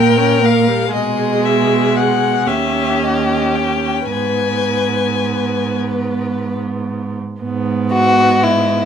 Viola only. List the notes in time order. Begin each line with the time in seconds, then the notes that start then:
Already playing: A#3
0.19 C#4
0.42 A#3
0.68 G3
0.92 G#3
2.46 C#4
4.09 B3
7.42 B3